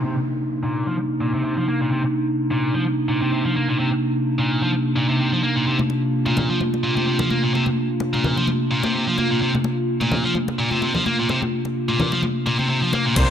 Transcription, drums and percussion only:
5.79 high conga
5.90 muted conga
6.26 high conga
6.37 muted conga, low conga
6.61 high conga
6.74 muted conga
6.97 high conga
7.19 muted conga, low conga
7.30 high conga
7.55 muted conga
7.66 high conga
8.00 muted conga
8.14 high conga
8.24 low conga
8.37 muted conga
8.47 high conga
8.83 muted conga, high conga
9.18 muted conga, high conga
9.55 high conga
9.64 muted conga
10.01 muted conga, high conga
10.12 low conga
10.35 high conga
10.48 muted conga
10.71 high conga
10.82 muted conga
10.94 low conga
11.06 high conga
11.29 muted conga
11.42 high conga
11.65 muted conga
11.88 high conga
12.00 low conga
12.12 muted conga
12.23 high conga
12.46 muted conga
12.59 high conga
12.93 muted conga, high conga
13.16 kick, closed hi-hat, crash, shaker

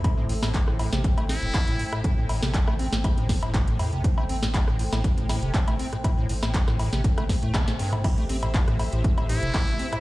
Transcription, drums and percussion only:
0.04 kick, closed hi-hat, cowbell
0.29 open hi-hat
0.43 snare, cowbell
0.54 kick, clap, closed hi-hat
0.68 cross-stick
0.79 open hi-hat, cowbell
0.93 snare, closed hi-hat
1.04 kick, closed hi-hat
1.18 closed hi-hat, cowbell
1.29 snare, open hi-hat
1.43 closed hi-hat
1.54 kick, clap, closed hi-hat, cowbell
1.68 closed hi-hat
1.79 open hi-hat
1.93 cross-stick, closed hi-hat, cowbell
2.04 kick, closed hi-hat
2.29 open hi-hat, cowbell
2.43 snare
2.54 kick, clap, closed hi-hat
2.68 cross-stick, cowbell
2.79 open hi-hat
2.93 snare, closed hi-hat
3.04 kick, closed hi-hat, cowbell
3.18 closed hi-hat
3.29 kick, snare, open hi-hat
3.43 closed hi-hat, cowbell
3.54 kick, clap, closed hi-hat
3.68 closed hi-hat
3.79 open hi-hat, cowbell
3.93 closed hi-hat
4.04 kick, closed hi-hat
4.18 cowbell
4.29 open hi-hat
4.43 snare
4.54 kick, clap, closed hi-hat, cowbell
4.68 cross-stick
4.79 open hi-hat
4.93 snare, closed hi-hat, cowbell
5.04 kick, closed hi-hat
5.18 closed hi-hat
5.29 snare, open hi-hat, cowbell
5.43 closed hi-hat
5.54 kick, clap, closed hi-hat
5.68 closed hi-hat, cowbell
5.79 open hi-hat
5.93 cross-stick, closed hi-hat
6.04 kick, closed hi-hat, cowbell
6.29 open hi-hat
6.43 snare, cowbell
6.54 kick, clap, closed hi-hat
6.68 cross-stick, snare
6.79 open hi-hat, cowbell
6.93 snare, closed hi-hat
7.04 kick, closed hi-hat
7.18 cross-stick, closed hi-hat, cowbell
7.29 kick, snare, open hi-hat
7.43 closed hi-hat
7.54 kick, snare, clap, closed hi-hat, cowbell
7.68 snare, closed hi-hat
7.79 open hi-hat
7.93 closed hi-hat, mid tom, cowbell
8.04 kick, closed hi-hat, cowbell, crash
8.18 closed hi-hat
8.29 open hi-hat
8.43 closed hi-hat, cowbell
8.54 kick, clap, closed hi-hat
8.68 cross-stick, closed hi-hat
8.79 open hi-hat, cowbell
8.93 closed hi-hat
9.04 kick, closed hi-hat
9.18 closed hi-hat, cowbell
9.29 open hi-hat
9.43 closed hi-hat
9.54 kick, clap, closed hi-hat, cowbell
9.68 closed hi-hat
9.79 open hi-hat
9.93 cross-stick, closed hi-hat, cowbell

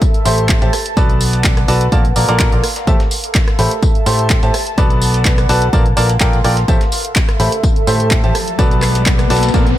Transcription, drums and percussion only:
0.02 kick, closed hi-hat, tambourine
0.14 closed hi-hat
0.25 snare, open hi-hat, tambourine
0.38 closed hi-hat
0.49 kick, snare, clap, closed hi-hat, tambourine
0.62 closed hi-hat
0.73 cross-stick, open hi-hat, tambourine
0.86 closed hi-hat
0.97 kick, closed hi-hat, tambourine
1.10 closed hi-hat
1.21 open hi-hat, tambourine
1.33 closed hi-hat
1.44 kick, snare, clap, closed hi-hat, tambourine
1.57 cross-stick, closed hi-hat
1.68 open hi-hat, tambourine
1.81 closed hi-hat
1.92 kick, closed hi-hat, tambourine
2.05 closed hi-hat
2.16 open hi-hat, tambourine
2.29 closed hi-hat
2.40 kick, snare, clap, closed hi-hat, tambourine
2.52 closed hi-hat
2.64 cross-stick, open hi-hat, tambourine
2.76 snare, closed hi-hat
2.87 kick, closed hi-hat, tambourine
3.00 snare, closed hi-hat
3.11 open hi-hat, tambourine
3.24 closed hi-hat
3.35 kick, snare, clap, closed hi-hat, tambourine
3.48 cross-stick, snare, closed hi-hat
3.59 open hi-hat, tambourine
3.71 closed hi-hat
3.83 kick, closed hi-hat, tambourine
3.95 closed hi-hat
4.06 snare, open hi-hat, tambourine
4.19 closed hi-hat
4.30 kick, snare, clap, closed hi-hat, tambourine
4.43 closed hi-hat
4.54 cross-stick, open hi-hat, tambourine
4.67 closed hi-hat
4.78 kick, closed hi-hat, tambourine
4.90 closed hi-hat
5.02 open hi-hat, tambourine
5.14 closed hi-hat
5.25 kick, snare, clap, closed hi-hat, tambourine
5.38 cross-stick, closed hi-hat
5.49 open hi-hat, tambourine
5.62 closed hi-hat
5.73 kick, closed hi-hat, tambourine
5.86 closed hi-hat
5.97 open hi-hat, tambourine
6.09 closed hi-hat
6.21 kick, snare, clap, closed hi-hat, tambourine
6.33 closed hi-hat
6.44 cross-stick, open hi-hat, tambourine
6.57 snare, closed hi-hat
6.68 kick, closed hi-hat, tambourine
6.81 snare, closed hi-hat
6.92 open hi-hat, tambourine
7.05 closed hi-hat
7.16 kick, snare, clap, closed hi-hat, tambourine
7.29 cross-stick, snare, closed hi-hat
7.40 open hi-hat, tambourine
7.52 closed hi-hat
7.63 kick, closed hi-hat, tambourine
7.76 closed hi-hat
7.87 open hi-hat, tambourine
8.00 closed hi-hat
8.11 kick, snare, clap, closed hi-hat, tambourine
8.24 closed hi-hat
8.35 cross-stick, open hi-hat, tambourine
8.48 closed hi-hat
8.59 kick, closed hi-hat, tambourine
8.71 closed hi-hat
8.82 cross-stick, clap, open hi-hat, tambourine
8.95 closed hi-hat
9.06 kick, snare, clap, closed hi-hat, tambourine
9.19 cross-stick, closed hi-hat
9.30 snare, open hi-hat, tambourine
9.37 snare, tambourine
9.43 snare, closed hi-hat, tambourine
9.48 snare, tambourine
9.54 kick, closed hi-hat, tambourine
9.67 closed hi-hat

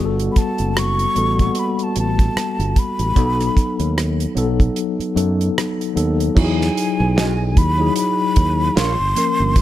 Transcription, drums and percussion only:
0.20 closed hi-hat
0.36 kick, closed hi-hat
0.58 closed hi-hat
0.77 cross-stick, closed hi-hat
0.99 closed hi-hat
1.16 closed hi-hat
1.39 kick, closed hi-hat
1.55 closed hi-hat
1.79 closed hi-hat
1.96 closed hi-hat
2.19 kick, closed hi-hat
2.37 cross-stick, closed hi-hat
2.60 closed hi-hat
2.76 kick, closed hi-hat
2.99 closed hi-hat
3.16 kick, closed hi-hat
3.40 cross-stick, closed hi-hat
3.57 kick, closed hi-hat
3.80 closed hi-hat
3.98 cross-stick, closed hi-hat
4.20 closed hi-hat
4.37 closed hi-hat
4.60 kick, closed hi-hat
4.76 closed hi-hat
5.00 closed hi-hat
5.17 closed hi-hat
5.41 closed hi-hat
5.58 cross-stick, closed hi-hat
5.81 closed hi-hat
5.97 closed hi-hat
6.20 closed hi-hat
6.37 kick, crash
6.61 snare
6.77 closed hi-hat
7.18 snare, closed hi-hat
7.57 kick, closed hi-hat
7.96 closed hi-hat
8.36 kick, closed hi-hat
8.77 snare, closed hi-hat
9.16 closed hi-hat
9.56 kick, closed hi-hat

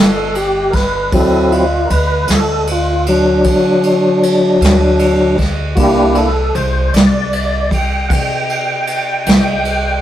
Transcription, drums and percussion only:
0.35 ride
0.73 kick, snare, ride
1.12 kick, ride
1.52 ride
1.90 ride
2.28 snare, ride
2.67 ride
3.06 ride
3.44 kick, ride
3.83 ride
4.23 ride
4.62 snare, ride
4.99 ride
5.38 kick, snare, ride
5.77 kick, ride
6.15 ride
6.55 ride
6.94 snare, ride
7.33 ride
7.71 kick, ride
8.10 kick, ride
8.50 ride
8.87 ride
9.26 snare, ride
9.65 ride

